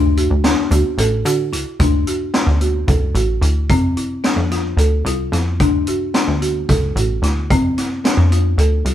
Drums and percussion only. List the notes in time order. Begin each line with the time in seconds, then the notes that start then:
0.17 closed hi-hat
0.44 snare, closed hi-hat
0.71 closed hi-hat, shaker
0.98 closed hi-hat
1.26 closed hi-hat, shaker
1.53 closed hi-hat, shaker
1.80 kick, closed hi-hat
2.07 closed hi-hat
2.34 snare, closed hi-hat
2.61 closed hi-hat
2.88 kick, closed hi-hat
3.15 closed hi-hat
3.42 closed hi-hat
3.69 kick, closed hi-hat
3.97 closed hi-hat
4.24 snare, closed hi-hat
4.51 snare, closed hi-hat
4.78 closed hi-hat
5.06 closed hi-hat
5.33 snare, closed hi-hat
5.60 kick, closed hi-hat
5.87 closed hi-hat
6.14 snare, closed hi-hat
6.42 closed hi-hat
6.69 kick, snare, closed hi-hat
6.97 closed hi-hat
7.23 snare, closed hi-hat
7.50 kick, closed hi-hat
7.78 snare, closed hi-hat
8.05 snare, closed hi-hat
8.32 closed hi-hat
8.58 closed hi-hat
8.86 closed hi-hat